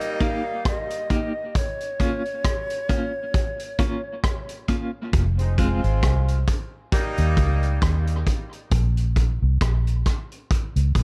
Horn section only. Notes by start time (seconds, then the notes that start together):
Already playing: G3 A#3 D#4
5.38 G#3 C4 D#4
5.58 G#3 C4 F4
6.92 G3 A#3 D#4